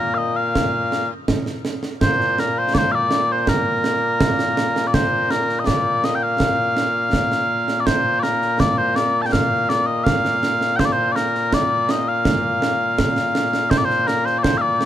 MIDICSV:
0, 0, Header, 1, 3, 480
1, 0, Start_track
1, 0, Key_signature, -2, "major"
1, 0, Tempo, 731707
1, 359, Time_signature, 2, 2, 24, 8
1, 9744, End_track
2, 0, Start_track
2, 0, Title_t, "Bagpipes"
2, 0, Program_c, 0, 109
2, 0, Note_on_c, 0, 46, 89
2, 0, Note_on_c, 0, 58, 89
2, 0, Note_on_c, 0, 70, 96
2, 94, Note_off_c, 0, 70, 0
2, 94, Note_on_c, 0, 77, 83
2, 117, Note_off_c, 0, 77, 0
2, 117, Note_on_c, 0, 75, 83
2, 238, Note_off_c, 0, 75, 0
2, 238, Note_on_c, 0, 77, 80
2, 719, Note_off_c, 0, 46, 0
2, 719, Note_off_c, 0, 58, 0
2, 719, Note_off_c, 0, 77, 0
2, 1323, Note_on_c, 0, 46, 89
2, 1323, Note_on_c, 0, 58, 89
2, 1323, Note_on_c, 0, 72, 104
2, 1571, Note_off_c, 0, 72, 0
2, 1571, Note_on_c, 0, 70, 84
2, 1695, Note_off_c, 0, 70, 0
2, 1695, Note_on_c, 0, 72, 79
2, 1798, Note_off_c, 0, 72, 0
2, 1798, Note_on_c, 0, 74, 101
2, 1823, Note_off_c, 0, 74, 0
2, 1823, Note_on_c, 0, 72, 101
2, 1914, Note_off_c, 0, 72, 0
2, 1914, Note_on_c, 0, 77, 104
2, 1935, Note_off_c, 0, 77, 0
2, 1935, Note_on_c, 0, 74, 104
2, 2177, Note_off_c, 0, 74, 0
2, 2177, Note_on_c, 0, 72, 89
2, 2232, Note_off_c, 0, 72, 0
2, 2232, Note_on_c, 0, 72, 68
2, 2289, Note_off_c, 0, 72, 0
2, 2289, Note_on_c, 0, 70, 92
2, 3195, Note_off_c, 0, 70, 0
2, 3195, Note_on_c, 0, 74, 69
2, 3241, Note_off_c, 0, 74, 0
2, 3241, Note_on_c, 0, 72, 88
2, 3481, Note_off_c, 0, 72, 0
2, 3481, Note_on_c, 0, 70, 89
2, 3670, Note_off_c, 0, 70, 0
2, 3670, Note_on_c, 0, 75, 62
2, 3715, Note_off_c, 0, 75, 0
2, 3715, Note_on_c, 0, 74, 91
2, 3966, Note_off_c, 0, 74, 0
2, 3966, Note_on_c, 0, 75, 103
2, 4036, Note_off_c, 0, 75, 0
2, 4036, Note_on_c, 0, 79, 71
2, 4087, Note_off_c, 0, 79, 0
2, 4087, Note_on_c, 0, 77, 96
2, 5119, Note_off_c, 0, 77, 0
2, 5119, Note_on_c, 0, 74, 69
2, 5157, Note_off_c, 0, 74, 0
2, 5157, Note_on_c, 0, 72, 97
2, 5376, Note_off_c, 0, 72, 0
2, 5376, Note_on_c, 0, 74, 89
2, 5398, Note_off_c, 0, 74, 0
2, 5398, Note_on_c, 0, 70, 89
2, 5640, Note_off_c, 0, 70, 0
2, 5640, Note_on_c, 0, 74, 99
2, 5759, Note_off_c, 0, 74, 0
2, 5759, Note_on_c, 0, 72, 83
2, 5875, Note_off_c, 0, 72, 0
2, 5875, Note_on_c, 0, 74, 93
2, 6047, Note_off_c, 0, 74, 0
2, 6047, Note_on_c, 0, 81, 84
2, 6074, Note_off_c, 0, 81, 0
2, 6074, Note_on_c, 0, 79, 84
2, 6116, Note_off_c, 0, 79, 0
2, 6116, Note_on_c, 0, 77, 106
2, 6358, Note_off_c, 0, 77, 0
2, 6358, Note_on_c, 0, 74, 100
2, 6469, Note_off_c, 0, 74, 0
2, 6469, Note_on_c, 0, 75, 84
2, 6587, Note_off_c, 0, 75, 0
2, 6587, Note_on_c, 0, 77, 104
2, 7059, Note_off_c, 0, 77, 0
2, 7059, Note_on_c, 0, 79, 100
2, 7082, Note_off_c, 0, 79, 0
2, 7082, Note_on_c, 0, 72, 100
2, 7118, Note_off_c, 0, 72, 0
2, 7118, Note_on_c, 0, 74, 85
2, 7165, Note_off_c, 0, 74, 0
2, 7165, Note_on_c, 0, 72, 94
2, 7294, Note_off_c, 0, 72, 0
2, 7294, Note_on_c, 0, 74, 84
2, 7319, Note_off_c, 0, 74, 0
2, 7319, Note_on_c, 0, 70, 84
2, 7569, Note_off_c, 0, 70, 0
2, 7569, Note_on_c, 0, 74, 97
2, 7810, Note_off_c, 0, 74, 0
2, 7810, Note_on_c, 0, 75, 88
2, 7928, Note_off_c, 0, 75, 0
2, 7928, Note_on_c, 0, 77, 86
2, 8989, Note_off_c, 0, 77, 0
2, 8989, Note_on_c, 0, 72, 105
2, 9036, Note_off_c, 0, 72, 0
2, 9036, Note_on_c, 0, 74, 89
2, 9084, Note_off_c, 0, 74, 0
2, 9084, Note_on_c, 0, 72, 100
2, 9231, Note_off_c, 0, 72, 0
2, 9231, Note_on_c, 0, 70, 96
2, 9352, Note_off_c, 0, 70, 0
2, 9352, Note_on_c, 0, 72, 85
2, 9436, Note_off_c, 0, 72, 0
2, 9436, Note_on_c, 0, 74, 69
2, 9466, Note_off_c, 0, 74, 0
2, 9466, Note_on_c, 0, 72, 93
2, 9562, Note_off_c, 0, 72, 0
2, 9562, Note_on_c, 0, 77, 96
2, 9587, Note_off_c, 0, 77, 0
2, 9587, Note_on_c, 0, 74, 96
2, 9744, Note_off_c, 0, 46, 0
2, 9744, Note_off_c, 0, 58, 0
2, 9744, Note_off_c, 0, 74, 0
2, 9744, End_track
3, 0, Start_track
3, 0, Title_t, "Drums"
3, 364, Note_on_c, 9, 35, 57
3, 364, Note_on_c, 9, 38, 87
3, 429, Note_off_c, 9, 35, 0
3, 429, Note_off_c, 9, 38, 0
3, 605, Note_on_c, 9, 38, 66
3, 670, Note_off_c, 9, 38, 0
3, 841, Note_on_c, 9, 35, 55
3, 841, Note_on_c, 9, 38, 94
3, 906, Note_off_c, 9, 35, 0
3, 906, Note_off_c, 9, 38, 0
3, 959, Note_on_c, 9, 38, 56
3, 1025, Note_off_c, 9, 38, 0
3, 1080, Note_on_c, 9, 38, 77
3, 1146, Note_off_c, 9, 38, 0
3, 1199, Note_on_c, 9, 38, 61
3, 1264, Note_off_c, 9, 38, 0
3, 1320, Note_on_c, 9, 35, 63
3, 1320, Note_on_c, 9, 38, 95
3, 1386, Note_off_c, 9, 35, 0
3, 1386, Note_off_c, 9, 38, 0
3, 1446, Note_on_c, 9, 38, 29
3, 1511, Note_off_c, 9, 38, 0
3, 1564, Note_on_c, 9, 38, 68
3, 1630, Note_off_c, 9, 38, 0
3, 1802, Note_on_c, 9, 35, 60
3, 1802, Note_on_c, 9, 38, 104
3, 1868, Note_off_c, 9, 35, 0
3, 1868, Note_off_c, 9, 38, 0
3, 2038, Note_on_c, 9, 38, 78
3, 2104, Note_off_c, 9, 38, 0
3, 2278, Note_on_c, 9, 35, 61
3, 2278, Note_on_c, 9, 38, 98
3, 2344, Note_off_c, 9, 35, 0
3, 2344, Note_off_c, 9, 38, 0
3, 2520, Note_on_c, 9, 38, 73
3, 2586, Note_off_c, 9, 38, 0
3, 2759, Note_on_c, 9, 35, 63
3, 2759, Note_on_c, 9, 38, 109
3, 2824, Note_off_c, 9, 35, 0
3, 2824, Note_off_c, 9, 38, 0
3, 2880, Note_on_c, 9, 38, 66
3, 2946, Note_off_c, 9, 38, 0
3, 3000, Note_on_c, 9, 38, 85
3, 3066, Note_off_c, 9, 38, 0
3, 3124, Note_on_c, 9, 38, 66
3, 3190, Note_off_c, 9, 38, 0
3, 3240, Note_on_c, 9, 35, 62
3, 3240, Note_on_c, 9, 38, 98
3, 3306, Note_off_c, 9, 35, 0
3, 3306, Note_off_c, 9, 38, 0
3, 3481, Note_on_c, 9, 38, 71
3, 3546, Note_off_c, 9, 38, 0
3, 3602, Note_on_c, 9, 38, 30
3, 3667, Note_off_c, 9, 38, 0
3, 3721, Note_on_c, 9, 35, 60
3, 3721, Note_on_c, 9, 38, 97
3, 3787, Note_off_c, 9, 35, 0
3, 3787, Note_off_c, 9, 38, 0
3, 3961, Note_on_c, 9, 38, 72
3, 4027, Note_off_c, 9, 38, 0
3, 4199, Note_on_c, 9, 35, 58
3, 4199, Note_on_c, 9, 38, 102
3, 4265, Note_off_c, 9, 35, 0
3, 4265, Note_off_c, 9, 38, 0
3, 4439, Note_on_c, 9, 38, 72
3, 4504, Note_off_c, 9, 38, 0
3, 4678, Note_on_c, 9, 35, 57
3, 4678, Note_on_c, 9, 38, 89
3, 4744, Note_off_c, 9, 35, 0
3, 4744, Note_off_c, 9, 38, 0
3, 4800, Note_on_c, 9, 38, 52
3, 4865, Note_off_c, 9, 38, 0
3, 5039, Note_on_c, 9, 38, 59
3, 5104, Note_off_c, 9, 38, 0
3, 5160, Note_on_c, 9, 35, 55
3, 5160, Note_on_c, 9, 38, 96
3, 5226, Note_off_c, 9, 35, 0
3, 5226, Note_off_c, 9, 38, 0
3, 5402, Note_on_c, 9, 38, 61
3, 5468, Note_off_c, 9, 38, 0
3, 5520, Note_on_c, 9, 38, 28
3, 5586, Note_off_c, 9, 38, 0
3, 5641, Note_on_c, 9, 35, 63
3, 5641, Note_on_c, 9, 38, 103
3, 5706, Note_off_c, 9, 35, 0
3, 5706, Note_off_c, 9, 38, 0
3, 5879, Note_on_c, 9, 38, 76
3, 5945, Note_off_c, 9, 38, 0
3, 6121, Note_on_c, 9, 35, 62
3, 6121, Note_on_c, 9, 38, 105
3, 6186, Note_off_c, 9, 35, 0
3, 6186, Note_off_c, 9, 38, 0
3, 6363, Note_on_c, 9, 38, 78
3, 6429, Note_off_c, 9, 38, 0
3, 6603, Note_on_c, 9, 35, 58
3, 6603, Note_on_c, 9, 38, 94
3, 6668, Note_off_c, 9, 35, 0
3, 6668, Note_off_c, 9, 38, 0
3, 6722, Note_on_c, 9, 38, 52
3, 6788, Note_off_c, 9, 38, 0
3, 6842, Note_on_c, 9, 38, 70
3, 6908, Note_off_c, 9, 38, 0
3, 6961, Note_on_c, 9, 38, 52
3, 7027, Note_off_c, 9, 38, 0
3, 7081, Note_on_c, 9, 35, 51
3, 7081, Note_on_c, 9, 38, 89
3, 7147, Note_off_c, 9, 35, 0
3, 7147, Note_off_c, 9, 38, 0
3, 7322, Note_on_c, 9, 38, 67
3, 7388, Note_off_c, 9, 38, 0
3, 7444, Note_on_c, 9, 38, 28
3, 7509, Note_off_c, 9, 38, 0
3, 7561, Note_on_c, 9, 35, 54
3, 7561, Note_on_c, 9, 38, 95
3, 7626, Note_off_c, 9, 35, 0
3, 7626, Note_off_c, 9, 38, 0
3, 7799, Note_on_c, 9, 38, 81
3, 7865, Note_off_c, 9, 38, 0
3, 8038, Note_on_c, 9, 35, 62
3, 8038, Note_on_c, 9, 38, 97
3, 8104, Note_off_c, 9, 35, 0
3, 8104, Note_off_c, 9, 38, 0
3, 8280, Note_on_c, 9, 38, 76
3, 8345, Note_off_c, 9, 38, 0
3, 8518, Note_on_c, 9, 35, 60
3, 8518, Note_on_c, 9, 38, 104
3, 8584, Note_off_c, 9, 35, 0
3, 8584, Note_off_c, 9, 38, 0
3, 8635, Note_on_c, 9, 38, 59
3, 8701, Note_off_c, 9, 38, 0
3, 8758, Note_on_c, 9, 38, 83
3, 8823, Note_off_c, 9, 38, 0
3, 8878, Note_on_c, 9, 38, 61
3, 8944, Note_off_c, 9, 38, 0
3, 8995, Note_on_c, 9, 35, 58
3, 8995, Note_on_c, 9, 38, 98
3, 9061, Note_off_c, 9, 35, 0
3, 9061, Note_off_c, 9, 38, 0
3, 9119, Note_on_c, 9, 38, 30
3, 9185, Note_off_c, 9, 38, 0
3, 9236, Note_on_c, 9, 38, 69
3, 9301, Note_off_c, 9, 38, 0
3, 9358, Note_on_c, 9, 38, 28
3, 9424, Note_off_c, 9, 38, 0
3, 9475, Note_on_c, 9, 35, 56
3, 9475, Note_on_c, 9, 38, 110
3, 9541, Note_off_c, 9, 35, 0
3, 9541, Note_off_c, 9, 38, 0
3, 9714, Note_on_c, 9, 38, 72
3, 9744, Note_off_c, 9, 38, 0
3, 9744, End_track
0, 0, End_of_file